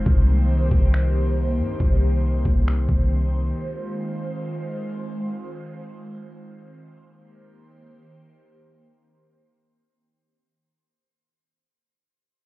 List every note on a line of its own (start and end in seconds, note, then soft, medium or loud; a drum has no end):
0.00 6.98 D#3 medium
0.00 3.50 C4 medium
0.00 6.98 C5 medium
0.06 0.69 C2 loud
0.06 3.51 A#3 medium
0.06 3.51 G4 medium
0.06 kick loud
0.71 1.60 C2 loud
0.71 kick loud
0.94 finger snap loud
1.59 1.79 G2 loud
1.80 2.43 C2 loud
1.80 kick loud
2.45 2.87 C2 loud
2.45 kick loud
2.68 finger snap loud
2.89 3.51 C2 loud
2.89 kick medium
3.54 6.98 G#3 medium
3.54 10.46 C4 medium
3.54 6.98 F4 medium
7.02 10.46 D#3 medium
7.02 10.46 A#3 medium
7.02 10.46 G4 medium
7.02 10.46 C5 medium